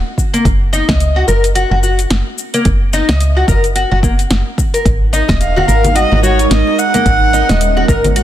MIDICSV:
0, 0, Header, 1, 6, 480
1, 0, Start_track
1, 0, Tempo, 550459
1, 397, Time_signature, 4, 2, 24, 8
1, 7177, End_track
2, 0, Start_track
2, 0, Title_t, "Kamancheh"
2, 0, Program_c, 0, 110
2, 4717, Note_on_c, 0, 77, 86
2, 5196, Note_on_c, 0, 75, 101
2, 5209, Note_off_c, 0, 77, 0
2, 5432, Note_off_c, 0, 75, 0
2, 5437, Note_on_c, 0, 73, 92
2, 5660, Note_off_c, 0, 73, 0
2, 5677, Note_on_c, 0, 75, 92
2, 5920, Note_on_c, 0, 78, 106
2, 5933, Note_off_c, 0, 75, 0
2, 6878, Note_off_c, 0, 78, 0
2, 7177, End_track
3, 0, Start_track
3, 0, Title_t, "Oud"
3, 0, Program_c, 1, 24
3, 293, Note_on_c, 1, 58, 96
3, 390, Note_off_c, 1, 58, 0
3, 634, Note_on_c, 1, 63, 93
3, 768, Note_off_c, 1, 63, 0
3, 773, Note_on_c, 1, 75, 96
3, 1001, Note_off_c, 1, 75, 0
3, 1012, Note_on_c, 1, 66, 68
3, 1105, Note_off_c, 1, 66, 0
3, 1113, Note_on_c, 1, 70, 73
3, 1247, Note_off_c, 1, 70, 0
3, 1354, Note_on_c, 1, 66, 75
3, 1481, Note_off_c, 1, 66, 0
3, 1494, Note_on_c, 1, 66, 70
3, 1553, Note_off_c, 1, 66, 0
3, 1596, Note_on_c, 1, 66, 66
3, 1729, Note_off_c, 1, 66, 0
3, 2215, Note_on_c, 1, 58, 95
3, 2311, Note_off_c, 1, 58, 0
3, 2556, Note_on_c, 1, 63, 94
3, 2689, Note_off_c, 1, 63, 0
3, 2695, Note_on_c, 1, 75, 101
3, 2921, Note_off_c, 1, 75, 0
3, 2935, Note_on_c, 1, 66, 72
3, 3026, Note_off_c, 1, 66, 0
3, 3034, Note_on_c, 1, 70, 71
3, 3168, Note_off_c, 1, 70, 0
3, 3274, Note_on_c, 1, 66, 70
3, 3401, Note_off_c, 1, 66, 0
3, 3413, Note_on_c, 1, 66, 70
3, 3472, Note_off_c, 1, 66, 0
3, 3514, Note_on_c, 1, 58, 67
3, 3595, Note_off_c, 1, 58, 0
3, 4132, Note_on_c, 1, 70, 65
3, 4225, Note_off_c, 1, 70, 0
3, 4472, Note_on_c, 1, 63, 85
3, 4607, Note_off_c, 1, 63, 0
3, 4611, Note_on_c, 1, 75, 92
3, 4840, Note_off_c, 1, 75, 0
3, 4852, Note_on_c, 1, 66, 70
3, 4945, Note_off_c, 1, 66, 0
3, 4952, Note_on_c, 1, 70, 72
3, 5087, Note_off_c, 1, 70, 0
3, 5191, Note_on_c, 1, 66, 74
3, 5319, Note_off_c, 1, 66, 0
3, 5332, Note_on_c, 1, 66, 69
3, 5392, Note_off_c, 1, 66, 0
3, 5433, Note_on_c, 1, 66, 65
3, 5567, Note_off_c, 1, 66, 0
3, 6053, Note_on_c, 1, 58, 93
3, 6150, Note_off_c, 1, 58, 0
3, 6393, Note_on_c, 1, 63, 92
3, 6527, Note_off_c, 1, 63, 0
3, 6533, Note_on_c, 1, 75, 97
3, 6761, Note_off_c, 1, 75, 0
3, 6773, Note_on_c, 1, 66, 70
3, 6865, Note_off_c, 1, 66, 0
3, 6875, Note_on_c, 1, 70, 74
3, 7008, Note_off_c, 1, 70, 0
3, 7115, Note_on_c, 1, 66, 73
3, 7177, Note_off_c, 1, 66, 0
3, 7177, End_track
4, 0, Start_track
4, 0, Title_t, "Ambient pad"
4, 0, Program_c, 2, 92
4, 4236, Note_on_c, 2, 63, 72
4, 4237, Note_on_c, 2, 56, 79
4, 4237, Note_on_c, 2, 70, 92
4, 6137, Note_off_c, 2, 63, 0
4, 6156, Note_on_c, 2, 61, 74
4, 7177, Note_off_c, 2, 56, 0
4, 7177, Note_off_c, 2, 61, 0
4, 7177, Note_off_c, 2, 70, 0
4, 7177, End_track
5, 0, Start_track
5, 0, Title_t, "FM bass"
5, 0, Program_c, 3, 39
5, 392, Note_on_c, 3, 30, 100
5, 717, Note_off_c, 3, 30, 0
5, 773, Note_on_c, 3, 37, 101
5, 1075, Note_off_c, 3, 37, 0
5, 1118, Note_on_c, 3, 30, 80
5, 1440, Note_off_c, 3, 30, 0
5, 1493, Note_on_c, 3, 30, 93
5, 1794, Note_off_c, 3, 30, 0
5, 1836, Note_on_c, 3, 30, 96
5, 1940, Note_off_c, 3, 30, 0
5, 2315, Note_on_c, 3, 30, 92
5, 2639, Note_off_c, 3, 30, 0
5, 2695, Note_on_c, 3, 37, 109
5, 2995, Note_off_c, 3, 37, 0
5, 3034, Note_on_c, 3, 30, 84
5, 3358, Note_off_c, 3, 30, 0
5, 3416, Note_on_c, 3, 30, 90
5, 3716, Note_off_c, 3, 30, 0
5, 3755, Note_on_c, 3, 30, 99
5, 3860, Note_off_c, 3, 30, 0
5, 4234, Note_on_c, 3, 32, 99
5, 4558, Note_off_c, 3, 32, 0
5, 4612, Note_on_c, 3, 27, 111
5, 4914, Note_off_c, 3, 27, 0
5, 4957, Note_on_c, 3, 32, 82
5, 5279, Note_off_c, 3, 32, 0
5, 5338, Note_on_c, 3, 32, 96
5, 5637, Note_off_c, 3, 32, 0
5, 5675, Note_on_c, 3, 32, 95
5, 5780, Note_off_c, 3, 32, 0
5, 6154, Note_on_c, 3, 32, 98
5, 6478, Note_off_c, 3, 32, 0
5, 6537, Note_on_c, 3, 27, 101
5, 6836, Note_off_c, 3, 27, 0
5, 6876, Note_on_c, 3, 32, 82
5, 7177, Note_off_c, 3, 32, 0
5, 7177, End_track
6, 0, Start_track
6, 0, Title_t, "Drums"
6, 154, Note_on_c, 9, 36, 60
6, 163, Note_on_c, 9, 69, 74
6, 242, Note_off_c, 9, 36, 0
6, 250, Note_off_c, 9, 69, 0
6, 296, Note_on_c, 9, 42, 43
6, 302, Note_on_c, 9, 69, 45
6, 384, Note_off_c, 9, 42, 0
6, 389, Note_off_c, 9, 69, 0
6, 394, Note_on_c, 9, 36, 113
6, 397, Note_on_c, 9, 42, 47
6, 402, Note_on_c, 9, 69, 33
6, 481, Note_off_c, 9, 36, 0
6, 484, Note_off_c, 9, 42, 0
6, 490, Note_off_c, 9, 69, 0
6, 641, Note_on_c, 9, 69, 77
6, 728, Note_off_c, 9, 69, 0
6, 774, Note_on_c, 9, 36, 103
6, 775, Note_on_c, 9, 38, 77
6, 775, Note_on_c, 9, 42, 41
6, 780, Note_on_c, 9, 69, 43
6, 861, Note_off_c, 9, 36, 0
6, 862, Note_off_c, 9, 38, 0
6, 862, Note_off_c, 9, 42, 0
6, 868, Note_off_c, 9, 69, 0
6, 875, Note_on_c, 9, 42, 54
6, 881, Note_on_c, 9, 69, 35
6, 963, Note_off_c, 9, 42, 0
6, 968, Note_off_c, 9, 69, 0
6, 1120, Note_on_c, 9, 69, 79
6, 1207, Note_off_c, 9, 69, 0
6, 1256, Note_on_c, 9, 42, 39
6, 1261, Note_on_c, 9, 69, 40
6, 1343, Note_off_c, 9, 42, 0
6, 1349, Note_off_c, 9, 69, 0
6, 1356, Note_on_c, 9, 42, 54
6, 1362, Note_on_c, 9, 69, 35
6, 1443, Note_off_c, 9, 42, 0
6, 1449, Note_off_c, 9, 69, 0
6, 1600, Note_on_c, 9, 69, 78
6, 1687, Note_off_c, 9, 69, 0
6, 1733, Note_on_c, 9, 42, 40
6, 1739, Note_on_c, 9, 69, 44
6, 1820, Note_off_c, 9, 42, 0
6, 1826, Note_off_c, 9, 69, 0
6, 1835, Note_on_c, 9, 38, 76
6, 1835, Note_on_c, 9, 42, 49
6, 1841, Note_on_c, 9, 69, 32
6, 1922, Note_off_c, 9, 38, 0
6, 1922, Note_off_c, 9, 42, 0
6, 1928, Note_off_c, 9, 69, 0
6, 2078, Note_on_c, 9, 69, 78
6, 2165, Note_off_c, 9, 69, 0
6, 2213, Note_on_c, 9, 42, 43
6, 2219, Note_on_c, 9, 69, 44
6, 2300, Note_off_c, 9, 42, 0
6, 2306, Note_off_c, 9, 69, 0
6, 2312, Note_on_c, 9, 42, 49
6, 2315, Note_on_c, 9, 36, 106
6, 2318, Note_on_c, 9, 69, 33
6, 2399, Note_off_c, 9, 42, 0
6, 2402, Note_off_c, 9, 36, 0
6, 2405, Note_off_c, 9, 69, 0
6, 2558, Note_on_c, 9, 69, 76
6, 2645, Note_off_c, 9, 69, 0
6, 2692, Note_on_c, 9, 38, 74
6, 2692, Note_on_c, 9, 42, 38
6, 2698, Note_on_c, 9, 69, 45
6, 2780, Note_off_c, 9, 38, 0
6, 2780, Note_off_c, 9, 42, 0
6, 2785, Note_off_c, 9, 69, 0
6, 2795, Note_on_c, 9, 42, 51
6, 2800, Note_on_c, 9, 69, 37
6, 2882, Note_off_c, 9, 42, 0
6, 2888, Note_off_c, 9, 69, 0
6, 3035, Note_on_c, 9, 36, 94
6, 3039, Note_on_c, 9, 69, 77
6, 3122, Note_off_c, 9, 36, 0
6, 3126, Note_off_c, 9, 69, 0
6, 3173, Note_on_c, 9, 42, 37
6, 3179, Note_on_c, 9, 69, 42
6, 3261, Note_off_c, 9, 42, 0
6, 3266, Note_off_c, 9, 69, 0
6, 3275, Note_on_c, 9, 42, 53
6, 3281, Note_on_c, 9, 69, 35
6, 3363, Note_off_c, 9, 42, 0
6, 3368, Note_off_c, 9, 69, 0
6, 3514, Note_on_c, 9, 36, 104
6, 3521, Note_on_c, 9, 69, 78
6, 3601, Note_off_c, 9, 36, 0
6, 3608, Note_off_c, 9, 69, 0
6, 3654, Note_on_c, 9, 42, 38
6, 3659, Note_on_c, 9, 69, 40
6, 3741, Note_off_c, 9, 42, 0
6, 3747, Note_off_c, 9, 69, 0
6, 3754, Note_on_c, 9, 38, 72
6, 3754, Note_on_c, 9, 42, 49
6, 3760, Note_on_c, 9, 69, 33
6, 3841, Note_off_c, 9, 38, 0
6, 3841, Note_off_c, 9, 42, 0
6, 3847, Note_off_c, 9, 69, 0
6, 3993, Note_on_c, 9, 36, 64
6, 4000, Note_on_c, 9, 69, 76
6, 4081, Note_off_c, 9, 36, 0
6, 4087, Note_off_c, 9, 69, 0
6, 4134, Note_on_c, 9, 42, 42
6, 4140, Note_on_c, 9, 69, 46
6, 4221, Note_off_c, 9, 42, 0
6, 4227, Note_off_c, 9, 69, 0
6, 4234, Note_on_c, 9, 36, 115
6, 4235, Note_on_c, 9, 42, 52
6, 4241, Note_on_c, 9, 69, 32
6, 4321, Note_off_c, 9, 36, 0
6, 4322, Note_off_c, 9, 42, 0
6, 4328, Note_off_c, 9, 69, 0
6, 4479, Note_on_c, 9, 69, 74
6, 4566, Note_off_c, 9, 69, 0
6, 4608, Note_on_c, 9, 60, 53
6, 4613, Note_on_c, 9, 36, 97
6, 4615, Note_on_c, 9, 38, 75
6, 4615, Note_on_c, 9, 42, 42
6, 4621, Note_on_c, 9, 69, 46
6, 4695, Note_off_c, 9, 60, 0
6, 4700, Note_off_c, 9, 36, 0
6, 4702, Note_off_c, 9, 38, 0
6, 4702, Note_off_c, 9, 42, 0
6, 4708, Note_off_c, 9, 69, 0
6, 4715, Note_on_c, 9, 42, 55
6, 4715, Note_on_c, 9, 60, 42
6, 4721, Note_on_c, 9, 69, 33
6, 4802, Note_off_c, 9, 42, 0
6, 4802, Note_off_c, 9, 60, 0
6, 4808, Note_off_c, 9, 69, 0
6, 4858, Note_on_c, 9, 64, 75
6, 4863, Note_on_c, 9, 60, 68
6, 4946, Note_off_c, 9, 64, 0
6, 4950, Note_off_c, 9, 60, 0
6, 4962, Note_on_c, 9, 69, 75
6, 5049, Note_off_c, 9, 69, 0
6, 5096, Note_on_c, 9, 42, 39
6, 5096, Note_on_c, 9, 64, 83
6, 5100, Note_on_c, 9, 60, 68
6, 5102, Note_on_c, 9, 69, 41
6, 5183, Note_off_c, 9, 64, 0
6, 5184, Note_off_c, 9, 42, 0
6, 5187, Note_off_c, 9, 60, 0
6, 5189, Note_off_c, 9, 69, 0
6, 5194, Note_on_c, 9, 42, 54
6, 5199, Note_on_c, 9, 63, 35
6, 5200, Note_on_c, 9, 69, 34
6, 5281, Note_off_c, 9, 42, 0
6, 5286, Note_off_c, 9, 63, 0
6, 5287, Note_off_c, 9, 69, 0
6, 5341, Note_on_c, 9, 64, 81
6, 5428, Note_off_c, 9, 64, 0
6, 5430, Note_on_c, 9, 63, 71
6, 5440, Note_on_c, 9, 69, 73
6, 5518, Note_off_c, 9, 63, 0
6, 5528, Note_off_c, 9, 69, 0
6, 5575, Note_on_c, 9, 42, 40
6, 5581, Note_on_c, 9, 69, 44
6, 5662, Note_off_c, 9, 42, 0
6, 5668, Note_off_c, 9, 69, 0
6, 5676, Note_on_c, 9, 38, 76
6, 5676, Note_on_c, 9, 42, 55
6, 5682, Note_on_c, 9, 69, 33
6, 5763, Note_off_c, 9, 38, 0
6, 5763, Note_off_c, 9, 42, 0
6, 5769, Note_off_c, 9, 69, 0
6, 5817, Note_on_c, 9, 60, 42
6, 5904, Note_off_c, 9, 60, 0
6, 5921, Note_on_c, 9, 69, 70
6, 6008, Note_off_c, 9, 69, 0
6, 6053, Note_on_c, 9, 42, 42
6, 6059, Note_on_c, 9, 69, 46
6, 6064, Note_on_c, 9, 63, 75
6, 6140, Note_off_c, 9, 42, 0
6, 6146, Note_off_c, 9, 69, 0
6, 6151, Note_off_c, 9, 63, 0
6, 6154, Note_on_c, 9, 36, 102
6, 6155, Note_on_c, 9, 42, 54
6, 6160, Note_on_c, 9, 69, 30
6, 6241, Note_off_c, 9, 36, 0
6, 6242, Note_off_c, 9, 42, 0
6, 6248, Note_off_c, 9, 69, 0
6, 6401, Note_on_c, 9, 69, 68
6, 6488, Note_off_c, 9, 69, 0
6, 6535, Note_on_c, 9, 38, 68
6, 6535, Note_on_c, 9, 42, 43
6, 6535, Note_on_c, 9, 63, 66
6, 6538, Note_on_c, 9, 60, 48
6, 6540, Note_on_c, 9, 69, 44
6, 6622, Note_off_c, 9, 38, 0
6, 6622, Note_off_c, 9, 42, 0
6, 6622, Note_off_c, 9, 63, 0
6, 6626, Note_off_c, 9, 60, 0
6, 6628, Note_off_c, 9, 69, 0
6, 6634, Note_on_c, 9, 60, 44
6, 6635, Note_on_c, 9, 42, 59
6, 6640, Note_on_c, 9, 69, 33
6, 6721, Note_off_c, 9, 60, 0
6, 6722, Note_off_c, 9, 42, 0
6, 6728, Note_off_c, 9, 69, 0
6, 6777, Note_on_c, 9, 60, 67
6, 6864, Note_off_c, 9, 60, 0
6, 6875, Note_on_c, 9, 36, 91
6, 6881, Note_on_c, 9, 69, 73
6, 6962, Note_off_c, 9, 36, 0
6, 6968, Note_off_c, 9, 69, 0
6, 7014, Note_on_c, 9, 64, 88
6, 7015, Note_on_c, 9, 42, 41
6, 7020, Note_on_c, 9, 60, 58
6, 7020, Note_on_c, 9, 69, 37
6, 7101, Note_off_c, 9, 64, 0
6, 7102, Note_off_c, 9, 42, 0
6, 7107, Note_off_c, 9, 60, 0
6, 7108, Note_off_c, 9, 69, 0
6, 7115, Note_on_c, 9, 42, 53
6, 7121, Note_on_c, 9, 63, 33
6, 7121, Note_on_c, 9, 69, 33
6, 7177, Note_off_c, 9, 42, 0
6, 7177, Note_off_c, 9, 63, 0
6, 7177, Note_off_c, 9, 69, 0
6, 7177, End_track
0, 0, End_of_file